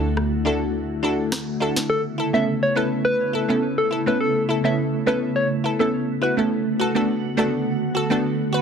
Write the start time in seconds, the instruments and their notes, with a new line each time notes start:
Already playing: 808-style bass D2, ambient pad D3 A3 E4 F#4
0.17 cross-stick
0.45 synth pluck D4 E4 F#4 A4
1.03 synth pluck D4 E4 F#4 A4
1.32 cross-stick, snare
1.60 synth pluck D4 E4 F#4 A4
1.76 snare
1.90 ambient pad C#3 A3 B3 E4, soft synth lead A4
2.18 synth pluck E4 A4
2.33 synth pluck A3 B3 C#4 E4 A4, soft synth lead E5
2.63 soft synth lead C#5
2.75 synth pluck A3 B3 C#4 E4 A4, soft synth lead B4
3.05 soft synth lead B4
3.33 synth pluck E4 A4
3.48 synth pluck A3 B3 C#4 E4 A4
3.78 soft synth lead A4
3.91 synth pluck E4 A4
4.06 synth pluck A3 B3 C#4 E4 A4, soft synth lead B4
4.20 soft synth lead A4
4.49 synth pluck E4 A4
4.64 synth pluck A3 B3 C#4 E4 A4, soft synth lead E5
5.06 synth pluck A3 B3 C#4 E4 A4, soft synth lead B4
5.36 soft synth lead C#5
5.64 synth pluck E4 A4
5.79 synth pluck A3 B3 C#4 E4 A4, soft synth lead A4
6.22 synth pluck E4 F#4, soft synth lead B4
6.37 synth pluck A3 B3 C#4 E4 A4
6.52 ambient pad D3 F#4
6.79 synth pluck F#4 A4
6.95 synth pluck A3 B3 D4 F#4 A4
7.37 synth pluck A3 B3 D4 F#4 A4
7.95 synth pluck F#4 A4
8.10 synth pluck A3 B3 D4 F#4 A4
8.53 synth pluck F#4 B4